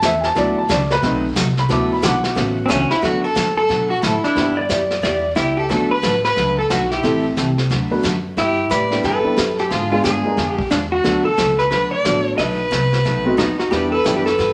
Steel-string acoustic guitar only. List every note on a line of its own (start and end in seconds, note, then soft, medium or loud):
0.02 0.13 C#3 medium
0.02 0.14 E3 medium
0.02 0.14 A3 medium
0.02 0.14 C#4 medium
0.02 0.14 F#4 medium
0.35 0.56 D3 medium
0.35 0.57 F#3 medium
0.35 0.57 A3 medium
0.35 0.57 D4 medium
0.35 0.57 F#4 medium
0.35 0.57 B4 medium
0.68 0.80 D3 medium
0.68 0.80 F#3 medium
0.68 0.80 A3 medium
0.68 0.80 D4 medium
0.68 0.81 F#4 medium
0.68 0.81 B4 medium
1.02 1.23 B2 medium
1.02 1.24 F#3 medium
1.02 1.24 A3 medium
1.02 1.24 D#4 medium
1.02 1.24 F#4 medium
1.36 1.47 B2 medium
1.36 1.47 F#3 medium
1.36 1.47 A3 medium
1.36 1.47 D#4 medium
1.36 1.47 F#4 medium
1.69 1.90 D3 medium
1.69 1.90 F#3 medium
1.69 1.90 A3 medium
1.69 1.90 D4 medium
1.69 1.90 F#4 medium
1.69 1.91 B4 medium
2.02 2.13 D3 medium
2.02 2.14 F#3 medium
2.02 2.14 A3 medium
2.02 2.14 D4 medium
2.02 2.14 F#4 medium
2.02 2.14 B4 medium
2.35 2.56 C#3 medium
2.35 2.57 E3 medium
2.35 2.57 A3 medium
2.35 2.57 C#4 medium
2.35 2.57 F#4 medium
2.68 2.80 C#3 medium
2.68 2.80 E3 medium
2.68 2.80 A3 medium
2.68 2.80 C#4 medium
2.68 2.81 F#4 medium
3.01 3.23 D3 medium
3.01 3.23 F#3 medium
3.01 3.23 A3 medium
3.01 3.23 D4 medium
3.01 3.24 F#4 medium
3.01 3.24 B4 medium
3.35 3.47 D3 medium
3.35 3.47 F#3 medium
3.35 3.47 A3 medium
3.35 3.47 D4 medium
3.35 3.47 F#4 medium
3.35 3.47 B4 medium
3.69 3.90 D3 medium
3.69 3.90 F#3 medium
3.69 3.90 A3 medium
3.69 3.90 D4 medium
3.69 3.91 F#4 medium
3.69 3.91 B4 medium
4.02 4.14 D3 medium
4.02 4.14 F#3 medium
4.02 4.14 A3 medium
4.02 4.14 D4 medium
4.02 4.14 F#4 medium
4.02 4.14 B4 medium
4.36 4.57 G3 medium
4.36 4.57 B3 medium
4.36 4.57 E4 medium
4.36 4.57 G4 medium
4.69 4.80 G3 medium
4.69 4.81 B3 medium
4.69 4.81 E4 medium
4.69 4.81 G4 medium
5.02 5.23 G3 medium
5.02 5.24 B3 medium
5.02 5.24 E4 medium
5.02 5.24 G4 medium
5.35 5.47 G3 medium
5.35 5.47 B3 medium
5.35 5.48 E4 medium
5.35 5.48 G4 medium
5.69 5.90 D3 medium
5.69 5.90 F#3 medium
5.69 5.91 A3 medium
5.69 5.91 D4 medium
5.69 5.91 F#4 medium
5.69 5.91 B4 medium
6.02 6.14 D3 medium
6.02 6.14 F#3 medium
6.02 6.14 A3 medium
6.02 6.14 D4 medium
6.02 6.15 F#4 medium
6.02 6.14 B4 medium
6.36 6.57 D3 medium
6.36 6.57 F#3 medium
6.36 6.58 A3 medium
6.36 6.58 D4 medium
6.36 6.58 F#4 medium
6.36 6.58 B4 medium
6.70 6.81 D3 medium
6.70 6.81 F#3 medium
6.70 6.81 A3 medium
6.70 6.82 D4 medium
6.70 6.82 F#4 medium
6.70 6.82 B4 medium
7.03 7.24 E3 medium
7.03 7.25 G3 medium
7.03 7.25 C4 medium
7.03 7.25 E4 medium
7.03 7.25 A4 medium
7.37 7.48 E3 medium
7.37 7.48 G3 medium
7.37 7.48 C4 medium
7.37 7.49 E4 medium
7.37 7.49 A4 medium
7.70 7.91 D3 medium
7.70 7.91 F#3 medium
7.70 7.91 A3 medium
7.70 7.92 D4 medium
7.70 7.92 F#4 medium
7.70 7.92 B4 medium
8.03 8.14 D3 medium
8.03 8.15 F#3 medium
8.03 8.15 A3 medium
8.03 8.15 D4 medium
8.03 8.15 F#4 medium
8.03 8.15 B4 medium
8.37 8.58 G3 medium
8.37 8.58 B3 medium
8.37 8.59 E4 medium
8.37 8.59 G4 medium
8.70 8.81 G3 medium
8.70 8.82 B3 medium
8.70 8.82 E4 medium
8.70 8.82 G4 medium
9.03 9.25 G3 medium
9.03 9.25 B3 medium
9.03 9.25 E4 medium
9.03 9.25 G4 medium
9.36 9.48 G3 medium
9.36 9.48 B3 medium
9.36 9.49 E4 medium
9.36 9.49 G4 medium
9.70 9.92 D3 medium
9.70 9.92 G#3 medium
9.70 9.92 B3 medium
9.70 9.92 F4 medium
9.70 9.92 G#4 medium
10.04 10.15 D3 medium
10.04 10.15 G#3 medium
10.04 10.15 B3 medium
10.04 10.16 F4 medium
10.04 10.16 G#4 medium
10.37 10.58 D3 medium
10.37 10.58 G#3 medium
10.37 10.59 B3 medium
10.37 10.59 F4 medium
10.37 10.59 G#4 medium
10.70 10.82 D3 medium
10.70 10.82 G#3 medium
10.70 10.82 B3 medium
10.70 10.82 F4 medium
10.70 10.83 G#4 medium
11.04 11.25 D3 medium
11.04 11.25 F#3 medium
11.04 11.25 A3 medium
11.04 11.26 D4 medium
11.04 11.26 F#4 medium
11.04 11.26 B4 medium
11.37 11.49 D3 medium
11.37 11.49 F#3 medium
11.37 11.49 A3 medium
11.37 11.49 D4 medium
11.37 11.49 F#4 medium
11.37 11.49 B4 medium
11.71 11.92 D3 medium
11.71 11.92 F#3 medium
11.71 11.92 A3 medium
11.71 11.93 D4 medium
11.71 11.93 F#4 medium
11.71 11.93 B4 medium
12.05 12.16 D3 medium
12.05 12.16 F#3 medium
12.05 12.16 A3 medium
12.05 12.16 D4 medium
12.05 12.16 F#4 medium
12.05 12.17 B4 medium
12.38 12.59 B2 medium
12.38 12.59 F#3 medium
12.38 12.59 A3 medium
12.38 12.60 D#4 medium
12.38 12.60 F#4 medium
12.71 12.82 B2 medium
12.71 12.82 F#3 medium
12.71 12.83 A3 medium
12.71 12.83 D#4 medium
12.71 12.83 F#4 medium
13.04 13.26 B2 medium
13.04 13.26 F#3 medium
13.04 13.26 A3 medium
13.04 13.26 D#4 medium
13.04 13.26 F#4 medium
13.37 13.49 B2 medium
13.37 13.49 F#3 medium
13.37 13.49 A3 medium
13.37 13.49 D#4 medium
13.37 13.50 F#4 medium
13.71 13.92 E3 medium
13.71 13.92 B3 medium
13.71 13.93 D4 medium
13.71 13.93 G4 medium
14.04 14.16 E3 medium
14.04 14.16 B3 medium
14.04 14.16 D4 medium
14.04 14.16 G4 medium
14.37 14.53 E3 medium
14.37 14.53 B3 medium
14.37 14.53 D4 medium
14.37 14.53 G4 medium